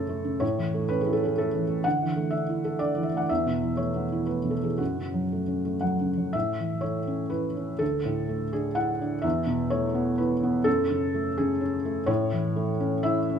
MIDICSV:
0, 0, Header, 1, 2, 480
1, 0, Start_track
1, 0, Tempo, 478851
1, 423, Time_signature, 3, 2, 24, 8
1, 3788, Tempo, 513259
1, 6188, Tempo, 488202
1, 7628, Tempo, 475059
1, 13266, End_track
2, 0, Start_track
2, 0, Title_t, "Felt piano"
2, 0, Program_c, 0, 0
2, 0, Control_c, 0, 64, 127
2, 0, Note_on_c, 0, 42, 53
2, 0, Note_on_c, 0, 49, 44
2, 0, Note_on_c, 0, 57, 49
2, 0, Note_on_c, 0, 61, 42
2, 0, Note_on_c, 0, 69, 78
2, 92, Note_off_c, 0, 57, 0
2, 92, Note_on_c, 0, 57, 44
2, 196, Note_off_c, 0, 49, 0
2, 246, Note_on_c, 0, 49, 38
2, 352, Note_off_c, 0, 57, 0
2, 387, Note_off_c, 0, 42, 0
2, 400, Note_on_c, 0, 73, 77
2, 410, Note_on_c, 0, 45, 57
2, 414, Note_off_c, 0, 49, 0
2, 419, Note_off_c, 0, 69, 0
2, 440, Control_c, 0, 64, 0
2, 447, Note_off_c, 0, 61, 0
2, 574, Control_c, 0, 64, 127
2, 578, Note_on_c, 0, 52, 38
2, 746, Note_on_c, 0, 57, 46
2, 835, Note_off_c, 0, 52, 0
2, 889, Note_on_c, 0, 71, 79
2, 890, Note_off_c, 0, 73, 0
2, 908, Note_on_c, 0, 61, 45
2, 999, Note_off_c, 0, 57, 0
2, 1010, Note_on_c, 0, 68, 49
2, 1015, Note_off_c, 0, 71, 0
2, 1063, Note_on_c, 0, 64, 45
2, 1130, Note_on_c, 0, 69, 57
2, 1135, Note_off_c, 0, 68, 0
2, 1159, Note_off_c, 0, 61, 0
2, 1235, Note_on_c, 0, 61, 45
2, 1254, Note_off_c, 0, 69, 0
2, 1254, Note_on_c, 0, 68, 48
2, 1315, Note_off_c, 0, 64, 0
2, 1375, Note_off_c, 0, 68, 0
2, 1384, Note_on_c, 0, 69, 68
2, 1402, Note_on_c, 0, 57, 43
2, 1481, Note_off_c, 0, 61, 0
2, 1549, Note_on_c, 0, 52, 41
2, 1644, Note_off_c, 0, 57, 0
2, 1691, Note_on_c, 0, 57, 38
2, 1798, Note_off_c, 0, 52, 0
2, 1809, Note_off_c, 0, 45, 0
2, 1844, Note_on_c, 0, 78, 79
2, 1853, Note_off_c, 0, 57, 0
2, 1858, Note_off_c, 0, 69, 0
2, 1864, Note_on_c, 0, 50, 53
2, 1874, Control_c, 0, 64, 0
2, 2027, Note_on_c, 0, 52, 38
2, 2047, Control_c, 0, 64, 127
2, 2169, Note_on_c, 0, 57, 37
2, 2277, Note_off_c, 0, 52, 0
2, 2311, Note_on_c, 0, 76, 57
2, 2329, Note_on_c, 0, 62, 40
2, 2330, Note_off_c, 0, 78, 0
2, 2429, Note_off_c, 0, 57, 0
2, 2498, Note_on_c, 0, 64, 33
2, 2589, Note_off_c, 0, 62, 0
2, 2653, Note_on_c, 0, 69, 46
2, 2754, Note_off_c, 0, 64, 0
2, 2798, Note_on_c, 0, 74, 76
2, 2805, Note_off_c, 0, 76, 0
2, 2808, Note_on_c, 0, 62, 41
2, 2912, Note_off_c, 0, 69, 0
2, 2975, Note_on_c, 0, 52, 42
2, 3037, Note_on_c, 0, 76, 45
2, 3050, Note_off_c, 0, 74, 0
2, 3071, Note_off_c, 0, 62, 0
2, 3143, Note_on_c, 0, 57, 35
2, 3170, Note_off_c, 0, 76, 0
2, 3177, Note_on_c, 0, 78, 59
2, 3236, Note_off_c, 0, 52, 0
2, 3267, Note_off_c, 0, 50, 0
2, 3300, Note_off_c, 0, 78, 0
2, 3302, Note_on_c, 0, 76, 75
2, 3304, Note_off_c, 0, 57, 0
2, 3317, Note_on_c, 0, 40, 46
2, 3322, Control_c, 0, 64, 0
2, 3460, Control_c, 0, 64, 127
2, 3472, Note_on_c, 0, 47, 35
2, 3634, Note_on_c, 0, 52, 33
2, 3726, Note_off_c, 0, 47, 0
2, 3778, Note_on_c, 0, 73, 59
2, 3786, Note_off_c, 0, 76, 0
2, 3794, Note_on_c, 0, 57, 33
2, 3883, Note_off_c, 0, 52, 0
2, 3954, Note_on_c, 0, 59, 35
2, 4037, Note_off_c, 0, 57, 0
2, 4110, Note_on_c, 0, 64, 39
2, 4198, Note_off_c, 0, 59, 0
2, 4240, Note_on_c, 0, 71, 51
2, 4251, Note_off_c, 0, 73, 0
2, 4259, Note_on_c, 0, 57, 34
2, 4358, Note_off_c, 0, 64, 0
2, 4412, Note_on_c, 0, 47, 32
2, 4467, Note_on_c, 0, 69, 37
2, 4490, Note_off_c, 0, 71, 0
2, 4515, Note_off_c, 0, 57, 0
2, 4578, Note_on_c, 0, 52, 28
2, 4589, Note_on_c, 0, 68, 44
2, 4605, Note_off_c, 0, 69, 0
2, 4675, Note_off_c, 0, 47, 0
2, 4712, Note_off_c, 0, 40, 0
2, 4722, Note_on_c, 0, 66, 48
2, 4728, Note_off_c, 0, 68, 0
2, 4742, Note_off_c, 0, 52, 0
2, 4743, Note_on_c, 0, 42, 40
2, 4760, Control_c, 0, 64, 0
2, 4897, Note_on_c, 0, 49, 26
2, 4915, Control_c, 0, 64, 127
2, 5059, Note_on_c, 0, 54, 28
2, 5161, Note_off_c, 0, 49, 0
2, 5231, Note_on_c, 0, 57, 27
2, 5323, Note_off_c, 0, 54, 0
2, 5375, Note_on_c, 0, 61, 27
2, 5489, Note_off_c, 0, 57, 0
2, 5538, Note_on_c, 0, 57, 33
2, 5641, Note_off_c, 0, 61, 0
2, 5685, Note_on_c, 0, 78, 53
2, 5698, Note_on_c, 0, 54, 32
2, 5703, Note_off_c, 0, 66, 0
2, 5802, Note_off_c, 0, 57, 0
2, 5873, Note_on_c, 0, 49, 31
2, 5961, Note_off_c, 0, 54, 0
2, 6029, Note_on_c, 0, 54, 25
2, 6125, Note_off_c, 0, 49, 0
2, 6150, Note_off_c, 0, 42, 0
2, 6172, Note_off_c, 0, 78, 0
2, 6173, Note_on_c, 0, 76, 74
2, 6186, Note_off_c, 0, 54, 0
2, 6193, Note_on_c, 0, 45, 47
2, 6204, Control_c, 0, 64, 0
2, 6351, Control_c, 0, 64, 127
2, 6431, Note_on_c, 0, 52, 36
2, 6644, Note_on_c, 0, 73, 58
2, 6663, Note_off_c, 0, 76, 0
2, 6668, Note_on_c, 0, 57, 36
2, 6814, Note_off_c, 0, 52, 0
2, 6903, Note_on_c, 0, 61, 41
2, 7049, Note_off_c, 0, 57, 0
2, 7124, Note_on_c, 0, 71, 62
2, 7133, Note_off_c, 0, 73, 0
2, 7142, Note_on_c, 0, 64, 39
2, 7288, Note_off_c, 0, 61, 0
2, 7388, Note_on_c, 0, 61, 36
2, 7529, Note_off_c, 0, 64, 0
2, 7590, Note_off_c, 0, 45, 0
2, 7606, Note_on_c, 0, 69, 72
2, 7616, Note_off_c, 0, 71, 0
2, 7618, Note_on_c, 0, 38, 45
2, 7627, Note_off_c, 0, 61, 0
2, 7642, Control_c, 0, 64, 0
2, 7794, Control_c, 0, 64, 127
2, 7874, Note_on_c, 0, 45, 42
2, 8112, Note_on_c, 0, 57, 36
2, 8261, Note_off_c, 0, 45, 0
2, 8345, Note_off_c, 0, 69, 0
2, 8353, Note_on_c, 0, 68, 70
2, 8367, Note_on_c, 0, 62, 43
2, 8499, Note_off_c, 0, 57, 0
2, 8578, Note_on_c, 0, 78, 76
2, 8590, Note_on_c, 0, 64, 42
2, 8595, Note_off_c, 0, 68, 0
2, 8747, Note_off_c, 0, 62, 0
2, 8846, Note_on_c, 0, 62, 39
2, 8979, Note_off_c, 0, 64, 0
2, 9033, Note_off_c, 0, 38, 0
2, 9049, Note_on_c, 0, 76, 70
2, 9069, Note_off_c, 0, 78, 0
2, 9073, Note_on_c, 0, 40, 54
2, 9082, Note_off_c, 0, 62, 0
2, 9093, Control_c, 0, 64, 0
2, 9247, Control_c, 0, 64, 127
2, 9300, Note_on_c, 0, 47, 43
2, 9542, Note_on_c, 0, 73, 72
2, 9545, Note_off_c, 0, 76, 0
2, 9557, Note_on_c, 0, 57, 42
2, 9695, Note_off_c, 0, 47, 0
2, 9785, Note_on_c, 0, 59, 43
2, 9940, Note_off_c, 0, 57, 0
2, 10020, Note_on_c, 0, 71, 67
2, 10027, Note_off_c, 0, 73, 0
2, 10045, Note_on_c, 0, 64, 45
2, 10171, Note_off_c, 0, 59, 0
2, 10277, Note_on_c, 0, 59, 46
2, 10420, Note_off_c, 0, 64, 0
2, 10469, Note_off_c, 0, 40, 0
2, 10490, Note_on_c, 0, 69, 86
2, 10501, Note_on_c, 0, 42, 62
2, 10503, Note_off_c, 0, 71, 0
2, 10514, Note_off_c, 0, 59, 0
2, 10528, Control_c, 0, 64, 0
2, 10672, Control_c, 0, 64, 127
2, 10752, Note_on_c, 0, 49, 47
2, 10997, Note_on_c, 0, 57, 46
2, 11134, Note_off_c, 0, 49, 0
2, 11218, Note_off_c, 0, 69, 0
2, 11230, Note_on_c, 0, 68, 76
2, 11247, Note_on_c, 0, 49, 57
2, 11374, Note_off_c, 0, 57, 0
2, 11466, Note_on_c, 0, 61, 48
2, 11467, Note_off_c, 0, 68, 0
2, 11618, Note_off_c, 0, 49, 0
2, 11711, Note_on_c, 0, 57, 44
2, 11848, Note_off_c, 0, 61, 0
2, 11899, Note_off_c, 0, 42, 0
2, 11927, Note_on_c, 0, 73, 88
2, 11938, Note_on_c, 0, 45, 69
2, 11948, Note_off_c, 0, 57, 0
2, 11965, Control_c, 0, 64, 0
2, 12145, Control_c, 0, 64, 127
2, 12187, Note_on_c, 0, 52, 49
2, 12430, Note_on_c, 0, 57, 49
2, 12572, Note_off_c, 0, 52, 0
2, 12671, Note_on_c, 0, 61, 51
2, 12811, Note_off_c, 0, 57, 0
2, 12896, Note_off_c, 0, 73, 0
2, 12903, Note_on_c, 0, 76, 84
2, 12924, Note_on_c, 0, 64, 54
2, 13052, Note_off_c, 0, 61, 0
2, 13171, Note_on_c, 0, 61, 39
2, 13266, Note_off_c, 0, 45, 0
2, 13266, Note_off_c, 0, 61, 0
2, 13266, Note_off_c, 0, 64, 0
2, 13266, Note_off_c, 0, 76, 0
2, 13266, End_track
0, 0, End_of_file